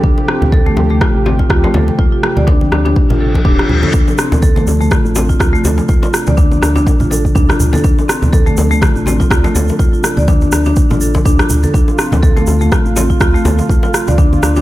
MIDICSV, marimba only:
0, 0, Header, 1, 2, 480
1, 0, Start_track
1, 0, Key_signature, -1, "minor"
1, 0, Tempo, 487805
1, 36, Time_signature, 4, 2, 24, 8
1, 14380, End_track
2, 0, Start_track
2, 0, Title_t, "Marimba"
2, 0, Program_c, 0, 12
2, 35, Note_on_c, 0, 62, 79
2, 165, Note_off_c, 0, 62, 0
2, 276, Note_on_c, 0, 60, 73
2, 406, Note_off_c, 0, 60, 0
2, 515, Note_on_c, 0, 69, 100
2, 639, Note_off_c, 0, 69, 0
2, 652, Note_on_c, 0, 57, 103
2, 746, Note_off_c, 0, 57, 0
2, 891, Note_on_c, 0, 57, 99
2, 986, Note_off_c, 0, 57, 0
2, 996, Note_on_c, 0, 65, 84
2, 1119, Note_off_c, 0, 65, 0
2, 1236, Note_on_c, 0, 60, 74
2, 1366, Note_off_c, 0, 60, 0
2, 1373, Note_on_c, 0, 65, 75
2, 1462, Note_off_c, 0, 65, 0
2, 1473, Note_on_c, 0, 65, 94
2, 1598, Note_off_c, 0, 65, 0
2, 1610, Note_on_c, 0, 57, 98
2, 1705, Note_off_c, 0, 57, 0
2, 1715, Note_on_c, 0, 69, 75
2, 1845, Note_off_c, 0, 69, 0
2, 1954, Note_on_c, 0, 65, 81
2, 2078, Note_off_c, 0, 65, 0
2, 2090, Note_on_c, 0, 65, 78
2, 2190, Note_off_c, 0, 65, 0
2, 2328, Note_on_c, 0, 74, 72
2, 2424, Note_off_c, 0, 74, 0
2, 2430, Note_on_c, 0, 62, 101
2, 2563, Note_off_c, 0, 62, 0
2, 2674, Note_on_c, 0, 62, 76
2, 2749, Note_off_c, 0, 62, 0
2, 2807, Note_on_c, 0, 62, 104
2, 2866, Note_off_c, 0, 62, 0
2, 3047, Note_on_c, 0, 65, 77
2, 3149, Note_off_c, 0, 65, 0
2, 3154, Note_on_c, 0, 69, 74
2, 3229, Note_off_c, 0, 69, 0
2, 3393, Note_on_c, 0, 62, 101
2, 3524, Note_off_c, 0, 62, 0
2, 3528, Note_on_c, 0, 65, 77
2, 3629, Note_off_c, 0, 65, 0
2, 3769, Note_on_c, 0, 69, 78
2, 3864, Note_off_c, 0, 69, 0
2, 3872, Note_on_c, 0, 62, 81
2, 4004, Note_off_c, 0, 62, 0
2, 4114, Note_on_c, 0, 60, 72
2, 4245, Note_off_c, 0, 60, 0
2, 4352, Note_on_c, 0, 69, 100
2, 4477, Note_off_c, 0, 69, 0
2, 4487, Note_on_c, 0, 57, 97
2, 4584, Note_off_c, 0, 57, 0
2, 4728, Note_on_c, 0, 57, 98
2, 4824, Note_off_c, 0, 57, 0
2, 4833, Note_on_c, 0, 65, 81
2, 4957, Note_off_c, 0, 65, 0
2, 5072, Note_on_c, 0, 60, 77
2, 5203, Note_off_c, 0, 60, 0
2, 5208, Note_on_c, 0, 65, 75
2, 5297, Note_off_c, 0, 65, 0
2, 5309, Note_on_c, 0, 65, 99
2, 5435, Note_off_c, 0, 65, 0
2, 5443, Note_on_c, 0, 57, 101
2, 5541, Note_off_c, 0, 57, 0
2, 5550, Note_on_c, 0, 69, 72
2, 5683, Note_off_c, 0, 69, 0
2, 5791, Note_on_c, 0, 65, 84
2, 5913, Note_off_c, 0, 65, 0
2, 5924, Note_on_c, 0, 65, 77
2, 6027, Note_off_c, 0, 65, 0
2, 6168, Note_on_c, 0, 74, 72
2, 6264, Note_off_c, 0, 74, 0
2, 6270, Note_on_c, 0, 62, 98
2, 6403, Note_off_c, 0, 62, 0
2, 6512, Note_on_c, 0, 62, 77
2, 6588, Note_off_c, 0, 62, 0
2, 6648, Note_on_c, 0, 62, 101
2, 6706, Note_off_c, 0, 62, 0
2, 6889, Note_on_c, 0, 65, 78
2, 6990, Note_off_c, 0, 65, 0
2, 6993, Note_on_c, 0, 69, 76
2, 7068, Note_off_c, 0, 69, 0
2, 7232, Note_on_c, 0, 62, 98
2, 7364, Note_off_c, 0, 62, 0
2, 7368, Note_on_c, 0, 65, 79
2, 7469, Note_off_c, 0, 65, 0
2, 7610, Note_on_c, 0, 69, 80
2, 7705, Note_off_c, 0, 69, 0
2, 7712, Note_on_c, 0, 62, 83
2, 7844, Note_off_c, 0, 62, 0
2, 7953, Note_on_c, 0, 60, 72
2, 8084, Note_off_c, 0, 60, 0
2, 8194, Note_on_c, 0, 69, 100
2, 8318, Note_off_c, 0, 69, 0
2, 8328, Note_on_c, 0, 57, 103
2, 8424, Note_off_c, 0, 57, 0
2, 8570, Note_on_c, 0, 57, 102
2, 8665, Note_off_c, 0, 57, 0
2, 8674, Note_on_c, 0, 65, 83
2, 8798, Note_off_c, 0, 65, 0
2, 8915, Note_on_c, 0, 60, 77
2, 9045, Note_off_c, 0, 60, 0
2, 9049, Note_on_c, 0, 65, 78
2, 9142, Note_off_c, 0, 65, 0
2, 9154, Note_on_c, 0, 65, 99
2, 9278, Note_off_c, 0, 65, 0
2, 9290, Note_on_c, 0, 57, 100
2, 9385, Note_off_c, 0, 57, 0
2, 9394, Note_on_c, 0, 69, 74
2, 9525, Note_off_c, 0, 69, 0
2, 9635, Note_on_c, 0, 65, 81
2, 9758, Note_off_c, 0, 65, 0
2, 9773, Note_on_c, 0, 65, 77
2, 9871, Note_off_c, 0, 65, 0
2, 10010, Note_on_c, 0, 74, 76
2, 10105, Note_off_c, 0, 74, 0
2, 10115, Note_on_c, 0, 62, 97
2, 10245, Note_off_c, 0, 62, 0
2, 10352, Note_on_c, 0, 62, 76
2, 10428, Note_off_c, 0, 62, 0
2, 10492, Note_on_c, 0, 62, 103
2, 10549, Note_off_c, 0, 62, 0
2, 10731, Note_on_c, 0, 65, 78
2, 10831, Note_off_c, 0, 65, 0
2, 10834, Note_on_c, 0, 69, 71
2, 10909, Note_off_c, 0, 69, 0
2, 11073, Note_on_c, 0, 62, 102
2, 11204, Note_off_c, 0, 62, 0
2, 11211, Note_on_c, 0, 65, 77
2, 11311, Note_off_c, 0, 65, 0
2, 11447, Note_on_c, 0, 69, 79
2, 11543, Note_off_c, 0, 69, 0
2, 11551, Note_on_c, 0, 62, 80
2, 11683, Note_off_c, 0, 62, 0
2, 11792, Note_on_c, 0, 60, 73
2, 11924, Note_off_c, 0, 60, 0
2, 12031, Note_on_c, 0, 69, 96
2, 12157, Note_off_c, 0, 69, 0
2, 12167, Note_on_c, 0, 57, 99
2, 12263, Note_off_c, 0, 57, 0
2, 12410, Note_on_c, 0, 57, 104
2, 12505, Note_off_c, 0, 57, 0
2, 12515, Note_on_c, 0, 65, 87
2, 12638, Note_off_c, 0, 65, 0
2, 12755, Note_on_c, 0, 60, 74
2, 12885, Note_off_c, 0, 60, 0
2, 12890, Note_on_c, 0, 65, 78
2, 12982, Note_off_c, 0, 65, 0
2, 12994, Note_on_c, 0, 65, 99
2, 13118, Note_off_c, 0, 65, 0
2, 13131, Note_on_c, 0, 57, 102
2, 13226, Note_off_c, 0, 57, 0
2, 13234, Note_on_c, 0, 69, 76
2, 13365, Note_off_c, 0, 69, 0
2, 13476, Note_on_c, 0, 65, 78
2, 13599, Note_off_c, 0, 65, 0
2, 13612, Note_on_c, 0, 65, 78
2, 13711, Note_off_c, 0, 65, 0
2, 13851, Note_on_c, 0, 74, 73
2, 13946, Note_off_c, 0, 74, 0
2, 13954, Note_on_c, 0, 62, 103
2, 14084, Note_off_c, 0, 62, 0
2, 14195, Note_on_c, 0, 62, 78
2, 14269, Note_off_c, 0, 62, 0
2, 14332, Note_on_c, 0, 62, 104
2, 14380, Note_off_c, 0, 62, 0
2, 14380, End_track
0, 0, End_of_file